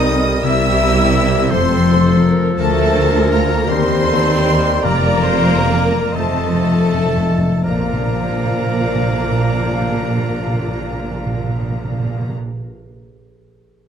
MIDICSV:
0, 0, Header, 1, 13, 480
1, 0, Start_track
1, 0, Key_signature, -2, "major"
1, 0, Tempo, 704225
1, 289, Time_signature, 6, 3, 24, 8
1, 771, Tempo, 732601
1, 2691, Tempo, 784314
1, 3171, Tempo, 846262
1, 3651, Tempo, 931677
1, 4131, Tempo, 1030928
1, 4611, Tempo, 952381
1, 5571, Tempo, 978793
1, 7011, Tempo, 952381
1, 7709, End_track
2, 0, Start_track
2, 0, Title_t, "Flute section"
2, 0, Program_c, 0, 73
2, 0, Note_on_c, 0, 87, 127
2, 258, Note_off_c, 0, 87, 0
2, 286, Note_on_c, 0, 88, 127
2, 1010, Note_off_c, 0, 88, 0
2, 1020, Note_on_c, 0, 84, 111
2, 1484, Note_off_c, 0, 84, 0
2, 1733, Note_on_c, 0, 81, 127
2, 2183, Note_off_c, 0, 81, 0
2, 2214, Note_on_c, 0, 82, 100
2, 2450, Note_off_c, 0, 82, 0
2, 2453, Note_on_c, 0, 84, 127
2, 3159, Note_off_c, 0, 84, 0
2, 3175, Note_on_c, 0, 82, 127
2, 3885, Note_off_c, 0, 82, 0
2, 3890, Note_on_c, 0, 81, 102
2, 4614, Note_off_c, 0, 81, 0
2, 4616, Note_on_c, 0, 77, 109
2, 6932, Note_off_c, 0, 77, 0
2, 7709, End_track
3, 0, Start_track
3, 0, Title_t, "Violin section"
3, 0, Program_c, 1, 48
3, 0, Note_on_c, 1, 87, 127
3, 290, Note_on_c, 1, 88, 127
3, 293, Note_off_c, 1, 87, 0
3, 1012, Note_off_c, 1, 88, 0
3, 1019, Note_on_c, 1, 84, 127
3, 1484, Note_off_c, 1, 84, 0
3, 1726, Note_on_c, 1, 81, 127
3, 2180, Note_off_c, 1, 81, 0
3, 2204, Note_on_c, 1, 82, 115
3, 2445, Note_off_c, 1, 82, 0
3, 2452, Note_on_c, 1, 84, 127
3, 3171, Note_on_c, 1, 82, 127
3, 3172, Note_off_c, 1, 84, 0
3, 3870, Note_off_c, 1, 82, 0
3, 3878, Note_on_c, 1, 81, 107
3, 4606, Note_on_c, 1, 82, 103
3, 4608, Note_off_c, 1, 81, 0
3, 6921, Note_off_c, 1, 82, 0
3, 7709, End_track
4, 0, Start_track
4, 0, Title_t, "Clarinet"
4, 0, Program_c, 2, 71
4, 0, Note_on_c, 2, 70, 94
4, 1007, Note_on_c, 2, 69, 114
4, 1017, Note_off_c, 2, 70, 0
4, 1726, Note_off_c, 2, 69, 0
4, 1732, Note_on_c, 2, 70, 120
4, 2960, Note_off_c, 2, 70, 0
4, 3154, Note_on_c, 2, 74, 103
4, 3875, Note_on_c, 2, 75, 95
4, 3883, Note_off_c, 2, 74, 0
4, 4400, Note_off_c, 2, 75, 0
4, 4598, Note_on_c, 2, 74, 95
4, 6913, Note_off_c, 2, 74, 0
4, 7709, End_track
5, 0, Start_track
5, 0, Title_t, "Oboe"
5, 0, Program_c, 3, 68
5, 0, Note_on_c, 3, 75, 127
5, 306, Note_on_c, 3, 76, 127
5, 316, Note_off_c, 3, 75, 0
5, 1016, Note_on_c, 3, 72, 127
5, 1026, Note_off_c, 3, 76, 0
5, 1492, Note_off_c, 3, 72, 0
5, 1743, Note_on_c, 3, 69, 127
5, 2208, Note_on_c, 3, 70, 106
5, 2218, Note_off_c, 3, 69, 0
5, 2447, Note_off_c, 3, 70, 0
5, 2458, Note_on_c, 3, 72, 127
5, 3172, Note_on_c, 3, 70, 127
5, 3180, Note_off_c, 3, 72, 0
5, 3884, Note_off_c, 3, 70, 0
5, 3890, Note_on_c, 3, 69, 117
5, 4599, Note_off_c, 3, 69, 0
5, 4603, Note_on_c, 3, 70, 100
5, 6918, Note_off_c, 3, 70, 0
5, 7709, End_track
6, 0, Start_track
6, 0, Title_t, "Violin section"
6, 0, Program_c, 4, 48
6, 0, Note_on_c, 4, 75, 127
6, 281, Note_off_c, 4, 75, 0
6, 288, Note_on_c, 4, 76, 127
6, 996, Note_off_c, 4, 76, 0
6, 1008, Note_on_c, 4, 72, 116
6, 1488, Note_off_c, 4, 72, 0
6, 1722, Note_on_c, 4, 69, 127
6, 2177, Note_off_c, 4, 69, 0
6, 2199, Note_on_c, 4, 70, 104
6, 2430, Note_on_c, 4, 72, 122
6, 2443, Note_off_c, 4, 70, 0
6, 3155, Note_on_c, 4, 70, 127
6, 3162, Note_off_c, 4, 72, 0
6, 3877, Note_off_c, 4, 70, 0
6, 3877, Note_on_c, 4, 69, 112
6, 4607, Note_off_c, 4, 69, 0
6, 4616, Note_on_c, 4, 70, 97
6, 6931, Note_off_c, 4, 70, 0
6, 7709, End_track
7, 0, Start_track
7, 0, Title_t, "Viola section"
7, 0, Program_c, 5, 48
7, 48, Note_on_c, 5, 69, 96
7, 270, Note_on_c, 5, 67, 127
7, 288, Note_off_c, 5, 69, 0
7, 988, Note_off_c, 5, 67, 0
7, 1002, Note_on_c, 5, 69, 100
7, 1241, Note_on_c, 5, 72, 115
7, 1246, Note_off_c, 5, 69, 0
7, 1474, Note_on_c, 5, 70, 121
7, 1485, Note_off_c, 5, 72, 0
7, 1708, Note_on_c, 5, 69, 127
7, 1720, Note_off_c, 5, 70, 0
7, 2422, Note_off_c, 5, 69, 0
7, 2433, Note_on_c, 5, 67, 111
7, 2672, Note_on_c, 5, 69, 113
7, 2684, Note_off_c, 5, 67, 0
7, 2908, Note_on_c, 5, 70, 107
7, 2918, Note_off_c, 5, 69, 0
7, 3156, Note_on_c, 5, 74, 127
7, 3161, Note_off_c, 5, 70, 0
7, 3384, Note_on_c, 5, 72, 127
7, 3394, Note_off_c, 5, 74, 0
7, 3637, Note_on_c, 5, 70, 111
7, 3640, Note_off_c, 5, 72, 0
7, 3868, Note_on_c, 5, 72, 92
7, 3877, Note_off_c, 5, 70, 0
7, 4242, Note_off_c, 5, 72, 0
7, 4597, Note_on_c, 5, 58, 101
7, 4597, Note_on_c, 5, 62, 92
7, 6912, Note_off_c, 5, 58, 0
7, 6912, Note_off_c, 5, 62, 0
7, 7709, End_track
8, 0, Start_track
8, 0, Title_t, "Harp"
8, 0, Program_c, 6, 46
8, 0, Note_on_c, 6, 48, 99
8, 0, Note_on_c, 6, 55, 65
8, 0, Note_on_c, 6, 58, 78
8, 0, Note_on_c, 6, 67, 69
8, 0, Note_on_c, 6, 79, 98
8, 55, Note_on_c, 6, 72, 89
8, 286, Note_off_c, 6, 48, 0
8, 294, Note_on_c, 6, 48, 110
8, 367, Note_off_c, 6, 55, 0
8, 522, Note_off_c, 6, 58, 0
8, 530, Note_on_c, 6, 58, 81
8, 771, Note_off_c, 6, 72, 0
8, 773, Note_off_c, 6, 67, 0
8, 779, Note_on_c, 6, 67, 77
8, 781, Note_on_c, 6, 72, 82
8, 1018, Note_on_c, 6, 53, 115
8, 1030, Note_off_c, 6, 79, 0
8, 1031, Note_off_c, 6, 58, 0
8, 1033, Note_off_c, 6, 48, 0
8, 1035, Note_off_c, 6, 67, 0
8, 1260, Note_on_c, 6, 65, 97
8, 1496, Note_off_c, 6, 65, 0
8, 1497, Note_off_c, 6, 72, 0
8, 1502, Note_on_c, 6, 65, 91
8, 1506, Note_on_c, 6, 72, 102
8, 1734, Note_on_c, 6, 50, 125
8, 1754, Note_off_c, 6, 72, 0
8, 1971, Note_on_c, 6, 58, 92
8, 2198, Note_off_c, 6, 65, 0
8, 2205, Note_on_c, 6, 65, 90
8, 2209, Note_on_c, 6, 77, 93
8, 2447, Note_on_c, 6, 51, 120
8, 2465, Note_off_c, 6, 65, 0
8, 2467, Note_off_c, 6, 77, 0
8, 2469, Note_off_c, 6, 50, 0
8, 2469, Note_off_c, 6, 53, 0
8, 2687, Note_off_c, 6, 58, 0
8, 2695, Note_on_c, 6, 58, 99
8, 2929, Note_on_c, 6, 67, 87
8, 2934, Note_on_c, 6, 75, 88
8, 3170, Note_on_c, 6, 53, 105
8, 3189, Note_off_c, 6, 51, 0
8, 3191, Note_off_c, 6, 67, 0
8, 3191, Note_off_c, 6, 75, 0
8, 3402, Note_on_c, 6, 65, 81
8, 3646, Note_off_c, 6, 65, 0
8, 3651, Note_on_c, 6, 65, 78
8, 3656, Note_on_c, 6, 74, 76
8, 3877, Note_off_c, 6, 53, 0
8, 3883, Note_on_c, 6, 53, 93
8, 3904, Note_off_c, 6, 58, 0
8, 3904, Note_off_c, 6, 74, 0
8, 4125, Note_off_c, 6, 65, 0
8, 4131, Note_on_c, 6, 65, 78
8, 4368, Note_off_c, 6, 65, 0
8, 4373, Note_on_c, 6, 65, 66
8, 4375, Note_on_c, 6, 75, 76
8, 4610, Note_on_c, 6, 46, 78
8, 4629, Note_off_c, 6, 75, 0
8, 4644, Note_on_c, 6, 58, 79
8, 4674, Note_off_c, 6, 65, 0
8, 4680, Note_on_c, 6, 65, 79
8, 4716, Note_on_c, 6, 74, 79
8, 4753, Note_on_c, 6, 77, 81
8, 5808, Note_off_c, 6, 53, 0
8, 6926, Note_off_c, 6, 46, 0
8, 6959, Note_off_c, 6, 58, 0
8, 6994, Note_off_c, 6, 65, 0
8, 7029, Note_off_c, 6, 74, 0
8, 7066, Note_off_c, 6, 77, 0
8, 7709, End_track
9, 0, Start_track
9, 0, Title_t, "French horn section"
9, 0, Program_c, 7, 60
9, 0, Note_on_c, 7, 63, 127
9, 160, Note_off_c, 7, 63, 0
9, 276, Note_on_c, 7, 64, 127
9, 990, Note_off_c, 7, 64, 0
9, 1030, Note_on_c, 7, 60, 113
9, 1499, Note_off_c, 7, 60, 0
9, 1732, Note_on_c, 7, 57, 127
9, 2183, Note_off_c, 7, 57, 0
9, 2207, Note_on_c, 7, 58, 99
9, 2446, Note_on_c, 7, 60, 127
9, 2447, Note_off_c, 7, 58, 0
9, 3156, Note_on_c, 7, 58, 127
9, 3170, Note_off_c, 7, 60, 0
9, 3864, Note_off_c, 7, 58, 0
9, 3886, Note_on_c, 7, 57, 118
9, 4597, Note_off_c, 7, 57, 0
9, 4614, Note_on_c, 7, 58, 90
9, 6929, Note_off_c, 7, 58, 0
9, 7709, End_track
10, 0, Start_track
10, 0, Title_t, "Bassoon"
10, 0, Program_c, 8, 70
10, 0, Note_on_c, 8, 55, 100
10, 1012, Note_on_c, 8, 53, 119
10, 1022, Note_off_c, 8, 55, 0
10, 2439, Note_off_c, 8, 53, 0
10, 2443, Note_on_c, 8, 55, 117
10, 3681, Note_off_c, 8, 55, 0
10, 3882, Note_on_c, 8, 53, 98
10, 4384, Note_off_c, 8, 53, 0
10, 4602, Note_on_c, 8, 53, 93
10, 6917, Note_off_c, 8, 53, 0
10, 7709, End_track
11, 0, Start_track
11, 0, Title_t, "Timpani"
11, 0, Program_c, 10, 47
11, 3168, Note_on_c, 10, 41, 124
11, 3861, Note_off_c, 10, 41, 0
11, 3881, Note_on_c, 10, 41, 57
11, 3922, Note_off_c, 10, 41, 0
11, 3928, Note_on_c, 10, 41, 55
11, 3970, Note_off_c, 10, 41, 0
11, 3976, Note_on_c, 10, 41, 63
11, 4018, Note_off_c, 10, 41, 0
11, 4024, Note_on_c, 10, 41, 61
11, 4077, Note_off_c, 10, 41, 0
11, 4083, Note_on_c, 10, 41, 66
11, 4131, Note_off_c, 10, 41, 0
11, 4137, Note_on_c, 10, 41, 66
11, 4173, Note_off_c, 10, 41, 0
11, 4178, Note_on_c, 10, 41, 80
11, 4222, Note_off_c, 10, 41, 0
11, 4228, Note_on_c, 10, 41, 72
11, 4272, Note_off_c, 10, 41, 0
11, 4277, Note_on_c, 10, 41, 92
11, 4325, Note_off_c, 10, 41, 0
11, 4331, Note_on_c, 10, 41, 100
11, 4380, Note_off_c, 10, 41, 0
11, 4386, Note_on_c, 10, 41, 102
11, 4435, Note_off_c, 10, 41, 0
11, 4443, Note_on_c, 10, 41, 107
11, 4477, Note_off_c, 10, 41, 0
11, 4482, Note_on_c, 10, 41, 118
11, 4527, Note_off_c, 10, 41, 0
11, 4532, Note_on_c, 10, 41, 100
11, 4579, Note_off_c, 10, 41, 0
11, 4606, Note_on_c, 10, 46, 95
11, 4641, Note_off_c, 10, 46, 0
11, 4641, Note_on_c, 10, 46, 93
11, 4676, Note_off_c, 10, 46, 0
11, 4676, Note_on_c, 10, 46, 94
11, 4713, Note_off_c, 10, 46, 0
11, 4713, Note_on_c, 10, 46, 90
11, 4750, Note_off_c, 10, 46, 0
11, 4751, Note_on_c, 10, 46, 106
11, 4788, Note_off_c, 10, 46, 0
11, 4788, Note_on_c, 10, 46, 83
11, 4824, Note_off_c, 10, 46, 0
11, 4824, Note_on_c, 10, 46, 92
11, 4860, Note_off_c, 10, 46, 0
11, 4860, Note_on_c, 10, 46, 90
11, 4895, Note_off_c, 10, 46, 0
11, 4895, Note_on_c, 10, 46, 90
11, 4931, Note_off_c, 10, 46, 0
11, 4931, Note_on_c, 10, 46, 89
11, 4967, Note_off_c, 10, 46, 0
11, 4967, Note_on_c, 10, 46, 102
11, 5004, Note_off_c, 10, 46, 0
11, 5005, Note_on_c, 10, 46, 83
11, 5042, Note_off_c, 10, 46, 0
11, 5042, Note_on_c, 10, 46, 91
11, 5079, Note_off_c, 10, 46, 0
11, 5082, Note_on_c, 10, 46, 87
11, 5119, Note_off_c, 10, 46, 0
11, 5119, Note_on_c, 10, 46, 97
11, 5156, Note_off_c, 10, 46, 0
11, 5156, Note_on_c, 10, 46, 94
11, 5191, Note_off_c, 10, 46, 0
11, 5191, Note_on_c, 10, 46, 98
11, 5228, Note_off_c, 10, 46, 0
11, 5230, Note_on_c, 10, 46, 85
11, 5264, Note_off_c, 10, 46, 0
11, 5264, Note_on_c, 10, 46, 102
11, 5300, Note_off_c, 10, 46, 0
11, 5301, Note_on_c, 10, 46, 90
11, 5338, Note_off_c, 10, 46, 0
11, 5339, Note_on_c, 10, 46, 99
11, 5374, Note_off_c, 10, 46, 0
11, 5374, Note_on_c, 10, 46, 87
11, 5411, Note_off_c, 10, 46, 0
11, 5413, Note_on_c, 10, 46, 101
11, 5450, Note_off_c, 10, 46, 0
11, 5450, Note_on_c, 10, 46, 85
11, 5486, Note_off_c, 10, 46, 0
11, 5486, Note_on_c, 10, 46, 92
11, 5521, Note_off_c, 10, 46, 0
11, 5521, Note_on_c, 10, 46, 87
11, 5557, Note_off_c, 10, 46, 0
11, 5557, Note_on_c, 10, 46, 100
11, 5591, Note_off_c, 10, 46, 0
11, 5591, Note_on_c, 10, 46, 92
11, 5626, Note_off_c, 10, 46, 0
11, 5626, Note_on_c, 10, 46, 101
11, 5661, Note_off_c, 10, 46, 0
11, 5662, Note_on_c, 10, 46, 97
11, 5695, Note_off_c, 10, 46, 0
11, 5695, Note_on_c, 10, 46, 93
11, 5731, Note_off_c, 10, 46, 0
11, 5731, Note_on_c, 10, 46, 97
11, 5767, Note_off_c, 10, 46, 0
11, 5768, Note_on_c, 10, 46, 98
11, 5801, Note_off_c, 10, 46, 0
11, 5801, Note_on_c, 10, 46, 93
11, 5837, Note_off_c, 10, 46, 0
11, 5840, Note_on_c, 10, 46, 105
11, 5873, Note_off_c, 10, 46, 0
11, 5873, Note_on_c, 10, 46, 81
11, 5908, Note_off_c, 10, 46, 0
11, 5908, Note_on_c, 10, 46, 94
11, 5942, Note_off_c, 10, 46, 0
11, 5942, Note_on_c, 10, 46, 92
11, 5978, Note_off_c, 10, 46, 0
11, 5981, Note_on_c, 10, 46, 94
11, 6017, Note_off_c, 10, 46, 0
11, 6018, Note_on_c, 10, 46, 88
11, 6051, Note_off_c, 10, 46, 0
11, 6051, Note_on_c, 10, 46, 102
11, 6083, Note_off_c, 10, 46, 0
11, 6083, Note_on_c, 10, 46, 87
11, 6119, Note_off_c, 10, 46, 0
11, 6119, Note_on_c, 10, 46, 98
11, 6153, Note_off_c, 10, 46, 0
11, 6153, Note_on_c, 10, 46, 89
11, 6189, Note_off_c, 10, 46, 0
11, 6192, Note_on_c, 10, 46, 93
11, 6227, Note_off_c, 10, 46, 0
11, 6227, Note_on_c, 10, 46, 89
11, 6260, Note_off_c, 10, 46, 0
11, 6260, Note_on_c, 10, 46, 98
11, 6296, Note_off_c, 10, 46, 0
11, 6298, Note_on_c, 10, 46, 89
11, 6332, Note_off_c, 10, 46, 0
11, 6332, Note_on_c, 10, 46, 91
11, 6368, Note_off_c, 10, 46, 0
11, 6370, Note_on_c, 10, 46, 91
11, 6405, Note_off_c, 10, 46, 0
11, 6406, Note_on_c, 10, 46, 94
11, 6441, Note_off_c, 10, 46, 0
11, 6444, Note_on_c, 10, 46, 93
11, 6479, Note_off_c, 10, 46, 0
11, 6479, Note_on_c, 10, 46, 100
11, 6515, Note_off_c, 10, 46, 0
11, 6515, Note_on_c, 10, 46, 90
11, 6549, Note_off_c, 10, 46, 0
11, 6549, Note_on_c, 10, 46, 104
11, 6583, Note_off_c, 10, 46, 0
11, 6583, Note_on_c, 10, 46, 95
11, 6618, Note_off_c, 10, 46, 0
11, 6620, Note_on_c, 10, 46, 97
11, 6655, Note_off_c, 10, 46, 0
11, 6655, Note_on_c, 10, 46, 88
11, 6691, Note_off_c, 10, 46, 0
11, 6692, Note_on_c, 10, 46, 102
11, 6727, Note_off_c, 10, 46, 0
11, 6728, Note_on_c, 10, 46, 90
11, 6764, Note_off_c, 10, 46, 0
11, 6766, Note_on_c, 10, 46, 91
11, 6800, Note_off_c, 10, 46, 0
11, 6800, Note_on_c, 10, 46, 92
11, 6836, Note_off_c, 10, 46, 0
11, 6838, Note_on_c, 10, 46, 103
11, 6873, Note_off_c, 10, 46, 0
11, 6874, Note_on_c, 10, 46, 90
11, 6910, Note_off_c, 10, 46, 0
11, 6911, Note_on_c, 10, 46, 99
11, 6946, Note_off_c, 10, 46, 0
11, 7709, End_track
12, 0, Start_track
12, 0, Title_t, "Cello section"
12, 0, Program_c, 11, 48
12, 0, Note_on_c, 11, 48, 119
12, 261, Note_off_c, 11, 48, 0
12, 282, Note_on_c, 11, 48, 116
12, 994, Note_off_c, 11, 48, 0
12, 1005, Note_on_c, 11, 41, 121
12, 1725, Note_off_c, 11, 41, 0
12, 1726, Note_on_c, 11, 38, 127
12, 2432, Note_off_c, 11, 38, 0
12, 2447, Note_on_c, 11, 39, 115
12, 3166, Note_on_c, 11, 41, 127
12, 3170, Note_off_c, 11, 39, 0
12, 3868, Note_off_c, 11, 41, 0
12, 3874, Note_on_c, 11, 41, 117
12, 4468, Note_off_c, 11, 41, 0
12, 4603, Note_on_c, 11, 46, 108
12, 6918, Note_off_c, 11, 46, 0
12, 7709, End_track
13, 0, Start_track
13, 0, Title_t, "Double bass section"
13, 0, Program_c, 12, 48
13, 0, Note_on_c, 12, 36, 103
13, 262, Note_off_c, 12, 36, 0
13, 295, Note_on_c, 12, 36, 123
13, 1000, Note_off_c, 12, 36, 0
13, 1019, Note_on_c, 12, 29, 105
13, 1729, Note_on_c, 12, 38, 127
13, 1732, Note_off_c, 12, 29, 0
13, 2433, Note_off_c, 12, 38, 0
13, 2449, Note_on_c, 12, 39, 115
13, 3171, Note_off_c, 12, 39, 0
13, 3171, Note_on_c, 12, 29, 116
13, 3875, Note_off_c, 12, 29, 0
13, 3881, Note_on_c, 12, 29, 99
13, 4471, Note_off_c, 12, 29, 0
13, 4608, Note_on_c, 12, 34, 95
13, 6923, Note_off_c, 12, 34, 0
13, 7709, End_track
0, 0, End_of_file